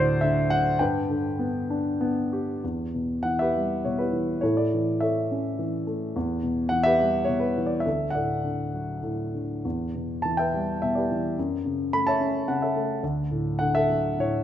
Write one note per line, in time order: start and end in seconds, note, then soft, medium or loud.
0.00 0.77 D2 medium
0.00 0.78 A2 medium
0.00 0.48 F#4 medium
0.00 0.23 C5 loud
0.00 0.82 D5 loud
0.21 0.79 D3 medium
0.21 0.52 E5 medium
0.50 0.79 F#3 soft
0.50 0.81 F#5 loud
0.79 2.59 G2 medium
0.79 1.96 B4 medium
0.79 1.96 G5 medium
1.10 2.29 D3 medium
1.39 1.99 B3 medium
1.70 2.60 D4 medium
2.01 2.61 B3 medium
2.33 2.62 G4 medium
2.64 4.39 E2 soft
2.94 3.83 B2 soft
3.23 4.11 E3 soft
3.23 3.40 F#5 medium
3.39 3.99 G4 medium
3.39 3.97 B4 medium
3.39 3.85 E5 medium
3.56 4.40 G3 soft
3.85 4.41 B2 soft
3.85 3.99 C#5 medium
3.98 4.40 E4 medium
3.98 4.41 G4 soft
3.98 4.44 B4 medium
4.13 4.42 E3 soft
4.41 6.11 A2 medium
4.41 5.27 E4 medium
4.41 4.57 A4 medium
4.41 4.56 C#5 medium
4.57 5.00 A4 medium
4.57 5.03 D5 medium
4.74 5.57 E3 soft
5.00 5.85 A3 medium
5.00 5.83 A4 soft
5.00 5.83 C#5 medium
5.00 5.82 E5 medium
5.31 6.13 C#4 soft
5.59 6.13 E3 soft
5.87 6.14 A3 medium
6.16 7.82 E2 medium
6.43 7.27 B2 soft
6.69 7.56 E3 soft
6.69 6.85 F#5 loud
6.83 7.68 G4 medium
6.83 7.38 B4 medium
6.83 7.29 E5 loud
7.00 7.84 G3 soft
7.25 7.84 B2 soft
7.25 7.41 C#5 medium
7.40 7.71 B4 medium
7.58 7.85 E3 soft
7.66 7.84 D5 medium
7.80 8.13 E5 medium
7.86 9.61 D2 medium
7.86 8.13 A4 medium
8.10 8.98 F#5 medium
8.15 9.01 A2 soft
8.15 9.00 A4 soft
8.15 9.00 D5 medium
8.45 9.33 D3 soft
8.74 9.62 F#3 soft
9.03 9.62 A2 soft
9.34 9.64 D3 soft
9.65 11.33 E2 medium
9.95 10.82 B2 soft
10.22 11.10 E3 medium
10.22 10.39 A5 medium
10.37 10.95 B4 medium
10.37 10.80 E5 medium
10.37 10.83 G5 medium
10.54 11.35 G3 soft
10.82 11.36 B2 medium
10.82 10.96 E5 medium
10.95 11.35 G4 soft
10.95 11.35 B4 soft
10.95 11.34 D5 medium
11.12 11.37 E3 soft
11.39 12.99 F#2 medium
11.65 12.47 C#3 soft
11.93 12.74 A3 medium
11.93 12.07 B5 loud
12.07 12.61 C#5 medium
12.07 12.61 E5 medium
12.07 12.48 A5 loud
12.20 13.00 C#4 medium
12.48 13.01 C#3 medium
12.48 12.61 F#5 medium
12.62 13.01 A4 soft
12.62 13.01 C#5 soft
12.62 13.00 E5 medium
12.76 13.02 A3 medium
13.03 14.44 D2 medium
13.31 14.17 A2 soft
13.59 14.44 D3 medium
13.59 13.75 F#5 loud
13.75 14.44 A4 medium
13.75 14.16 E5 loud
13.90 14.44 F#3 soft
14.19 14.44 A2 medium
14.19 14.44 C#5 medium